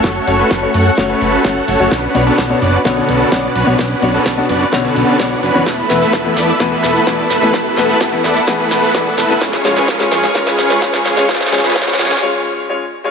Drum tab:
HH |----o-------o-------o-------o---|----o-------o-------o-------o---|----o-------o-------o-------o---|x---o-x-x-x-o-x-x---o-x-x---o-x-|
TB |--------------------------------|--------------------------------|--------------------------------|x---x-x-x---x-x-x---x-x-x---x-x-|
SD |o-------o-------o-------o-------|o-------o-------o-------o-------|o-------o-------o-------o-------|o---o---o---o---o---o---o---o---|
BD |o-------o-------o-------o-------|o-------o-------o-------o-------|o-------o-------o-------o-------|o-------o-------o-------o-------|

HH |x---o-x-x-x-o-x-x---o-x-x---o-x-|x---o-x-x-x-o-x-x---o-x-x---o-x-|x-x-o-x-x-x-o-x-----------------|
TB |x---x-x-x---x-x-x---x-x-x---x-x-|x---x-x-x---x-x-x---x-x-x---x-x-|x---x-x-x---x-x-----------------|
SD |o---o---o---o---o---o---o---o---|o-o-o-o-o-o-o-o-o-o-o-o-o-o-o-o-|oooooooooooooooo----------------|
BD |o-------o-------o-------o-------|o-------o-------o-------o-------|o-------o-----------------------|